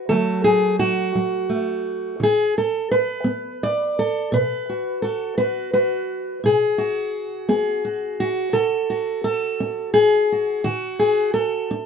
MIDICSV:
0, 0, Header, 1, 2, 480
1, 0, Start_track
1, 0, Tempo, 705053
1, 57, Time_signature, 6, 3, 24, 8
1, 8074, End_track
2, 0, Start_track
2, 0, Title_t, "Steel-string acoustic guitar"
2, 0, Program_c, 0, 25
2, 0, Note_on_c, 0, 66, 48
2, 61, Note_on_c, 0, 69, 94
2, 64, Note_on_c, 0, 50, 65
2, 70, Note_on_c, 0, 54, 47
2, 73, Note_on_c, 0, 57, 47
2, 77, Note_off_c, 0, 66, 0
2, 80, Note_on_c, 0, 66, 46
2, 298, Note_off_c, 0, 69, 0
2, 301, Note_on_c, 0, 68, 84
2, 493, Note_off_c, 0, 50, 0
2, 538, Note_off_c, 0, 68, 0
2, 541, Note_off_c, 0, 66, 0
2, 541, Note_on_c, 0, 66, 91
2, 782, Note_off_c, 0, 54, 0
2, 785, Note_on_c, 0, 54, 64
2, 1009, Note_off_c, 0, 57, 0
2, 1017, Note_on_c, 0, 57, 49
2, 1215, Note_off_c, 0, 54, 0
2, 1497, Note_on_c, 0, 50, 70
2, 1499, Note_off_c, 0, 57, 0
2, 1501, Note_off_c, 0, 66, 0
2, 1521, Note_on_c, 0, 68, 97
2, 1751, Note_off_c, 0, 68, 0
2, 1755, Note_on_c, 0, 69, 85
2, 1931, Note_off_c, 0, 50, 0
2, 1981, Note_off_c, 0, 69, 0
2, 1984, Note_on_c, 0, 71, 105
2, 2207, Note_on_c, 0, 59, 67
2, 2473, Note_on_c, 0, 74, 96
2, 2647, Note_off_c, 0, 59, 0
2, 2704, Note_off_c, 0, 71, 0
2, 2716, Note_on_c, 0, 69, 91
2, 2941, Note_on_c, 0, 47, 73
2, 2948, Note_off_c, 0, 74, 0
2, 2949, Note_off_c, 0, 69, 0
2, 2952, Note_on_c, 0, 71, 98
2, 3196, Note_on_c, 0, 66, 46
2, 3374, Note_off_c, 0, 47, 0
2, 3416, Note_off_c, 0, 71, 0
2, 3419, Note_on_c, 0, 69, 81
2, 3424, Note_off_c, 0, 66, 0
2, 3432, Note_on_c, 0, 66, 44
2, 3656, Note_off_c, 0, 66, 0
2, 3657, Note_off_c, 0, 69, 0
2, 3660, Note_on_c, 0, 59, 63
2, 3660, Note_on_c, 0, 71, 85
2, 3664, Note_on_c, 0, 66, 48
2, 3896, Note_off_c, 0, 71, 0
2, 3899, Note_off_c, 0, 66, 0
2, 3904, Note_on_c, 0, 71, 81
2, 3908, Note_on_c, 0, 66, 47
2, 4094, Note_off_c, 0, 59, 0
2, 4357, Note_off_c, 0, 66, 0
2, 4382, Note_on_c, 0, 47, 70
2, 4384, Note_off_c, 0, 71, 0
2, 4395, Note_on_c, 0, 68, 82
2, 4617, Note_on_c, 0, 66, 83
2, 4815, Note_off_c, 0, 47, 0
2, 5091, Note_off_c, 0, 68, 0
2, 5096, Note_on_c, 0, 59, 65
2, 5099, Note_on_c, 0, 68, 81
2, 5334, Note_off_c, 0, 66, 0
2, 5342, Note_on_c, 0, 66, 48
2, 5531, Note_off_c, 0, 59, 0
2, 5583, Note_off_c, 0, 66, 0
2, 5583, Note_on_c, 0, 66, 81
2, 5805, Note_off_c, 0, 68, 0
2, 5808, Note_on_c, 0, 69, 96
2, 5812, Note_on_c, 0, 49, 69
2, 5823, Note_off_c, 0, 66, 0
2, 6058, Note_on_c, 0, 66, 46
2, 6249, Note_off_c, 0, 49, 0
2, 6283, Note_off_c, 0, 69, 0
2, 6291, Note_on_c, 0, 69, 97
2, 6537, Note_on_c, 0, 61, 63
2, 6762, Note_off_c, 0, 69, 0
2, 6765, Note_on_c, 0, 68, 88
2, 6971, Note_off_c, 0, 61, 0
2, 7025, Note_off_c, 0, 66, 0
2, 7027, Note_on_c, 0, 66, 47
2, 7242, Note_off_c, 0, 66, 0
2, 7245, Note_on_c, 0, 66, 91
2, 7252, Note_off_c, 0, 68, 0
2, 7252, Note_on_c, 0, 50, 70
2, 7485, Note_on_c, 0, 68, 82
2, 7687, Note_off_c, 0, 50, 0
2, 7716, Note_off_c, 0, 68, 0
2, 7718, Note_on_c, 0, 69, 98
2, 7970, Note_on_c, 0, 62, 63
2, 7971, Note_off_c, 0, 66, 0
2, 8074, Note_off_c, 0, 62, 0
2, 8074, Note_off_c, 0, 69, 0
2, 8074, End_track
0, 0, End_of_file